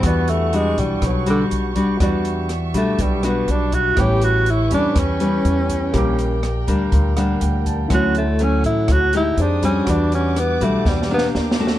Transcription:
<<
  \new Staff \with { instrumentName = "Violin section" } { \time 4/4 \key e \dorian \tempo 4 = 122 << { <g cis'''>1~ | <g cis'''>1 | <b' cis'''>1 | bes'1 |
cis''2. ees'''4 | d'''2. <d' d'''>4 | } \\ { fis''1 | e''1 | g''1~ | g''1 |
fis''2. g''4 | fis''2. g''4 | } >> }
  \new Staff \with { instrumentName = "Grand piano" } { \time 4/4 \key e \dorian << { r1 | r1 | r1 | r2 r8 fis''8 g''8 a''8 |
r1 | r1 | } \\ { <fis' b' d''>1 | <fis' b' d''>1 | <e' g' b' cis''>1 | <bes g' bes' d'''>1 |
<e' fis' a' cis''>2. <aes' c''>4 | <fis' b' d''>2. <bes' d''>4 | } >> }
  \new Staff \with { instrumentName = "Tenor saxophone" } { \time 4/4 \key e \dorian b8 a8 gis8 g8 fis8 d8 r4 | r4. a8 g8 b8 d'8 fis'8 | g'8 fis'8 e'8 d'8 cis'2~ | cis'4 r2. |
fis'8 a8 cis'8 e'8 fis'8 e'8 d'8 cis'8 | d'8 cis'8 b8 a8 g8 b8 r4 | }
  \new Staff \with { instrumentName = "Nylon-string guitar" } { \time 4/4 \key e \dorian << { <g d' fis'>4 <g d' fis'>4. <g d' fis'>4 <g d' fis'>8 | <g d' fis'>4 r8 <g d' fis'>4 <g d' fis'>4. | <g b cis'>4 r8 <g b cis'>4 <g b cis'>4. | <g bes>4 r8 <g bes d'>4 <g bes d'>4. |
<fis a cis'>8 r8 <fis a cis'>4. <gis ees' g'>4 <g d' fis'>8~ | <g d' fis'>4. <g d' fis'>4 <bes d' g'>4 <a cis' fis'>8 | } \\ { e2 b,2 | e2 b,2 | a,2 e2 | bes,2 bes,2 |
d2 a,4 r4 | e2 b,4 r4 | } >> }
  \new Staff \with { instrumentName = "Upright bass" } { \clef bass \time 4/4 \key e \dorian e,4. b,,8 b,,4 b,,4 | e,4. b,,8 b,,4 b,,4 | a,,4. e,8 e,4 e,4 | bes,,4. d,8 d,4 d,4 |
d,4. a,,8 d,4 f,4 | e,4. b,,8 e,4 ees,4 | }
  \new DrumStaff \with { instrumentName = "Drums" } \drummode { \time 4/4 <hh bd ss>8 hh8 hh8 <hh bd>8 <hh bd ss>8 hh8 hh8 <hh bd>8 | <hh bd ss>8 hh8 <hh ss>8 <hh bd>8 <hh bd>8 <hh ss>8 hh8 <hh bd>8 | <hh bd ss>8 hh8 hh8 <hh bd>8 <hh bd ss>8 hh8 hh8 <hh bd>8 | <hh bd ss>8 hh8 <hh ss>8 <hh bd>8 <hh bd>8 <hh ss>8 hh8 <hh bd>8 |
<hh bd ss>8 hh8 hh8 <hh bd>8 <hh bd ss>8 hh8 hh8 <hh bd>8 | <hh bd ss>8 hh8 <hh ss>8 <hh bd>8 \tuplet 3/2 { <bd sn>8 sn8 sn8 sn8 sn8 sn8 } | }
>>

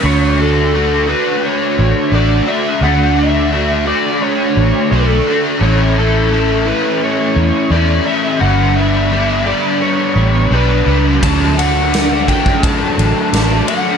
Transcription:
<<
  \new Staff \with { instrumentName = "Lead electric guitar" } { \time 4/4 \key d \major \tempo 4 = 86 cis''8 a'4 b'8 cis''4 d''8 e''8 | fis''8 e''4 d''8 cis''4 a'8. r16 | cis''8 a'4 b'8 cis''4 d''8 e''8 | fis''8 e''4 d''8 cis''4 b'8. r16 |
a''8 fis''4 g''8 a''4. fis''8 | }
  \new Staff \with { instrumentName = "Overdriven electric guitar" } { \time 4/4 \key d \major <d a d' fis'>8 <a d' fis'>8 <d a d' fis'>8 <a d' fis'>4. <d a d' fis'>8 <a d' fis'>8 | <d a d' fis'>8 <a d' fis'>8 <d a d' fis'>8 <a d' fis'>4. <d a d' fis'>8 <a d' fis'>8 | <a, e a cis' e'>8 <a cis' e'>8 <e a cis' e'>8 <a cis' e'>4. <e a cis' e'>8 <a cis' e'>8 | <g, d g b d'>8 <g b d'>8 <d g b d'>8 <g b d'>4. <d g b d'>8 <g b d'>8 |
<d fis a d'>8 <fis a d'>8 <d fis a d'>8 <fis a d'>4. <d fis a d'>8 <fis a d'>8 | }
  \new Staff \with { instrumentName = "Fingered electric bass" } { \clef bass \time 4/4 \key d \major d,2 r8 a,,16 r16 a,,8 r8 | d,2 r8 a,,16 r16 b,,8 r8 | a,,2 r8 e,16 r16 e,8 r8 | g,,2 r8 a,,8 b,,8 cis,8 |
d,2 r8 a,,16 r16 a,,8 r8 | }
  \new DrumStaff \with { instrumentName = "Drums" } \drummode { \time 4/4 r4 r4 r4 r4 | r4 r4 r4 r4 | r4 r4 r4 r4 | r4 r4 r4 r4 |
<bd cymr>8 cymr8 <cymr sn>8 <bd cymr>16 bd16 <bd cymr>8 cymr8 <cymr sn>8 cymr8 | }
>>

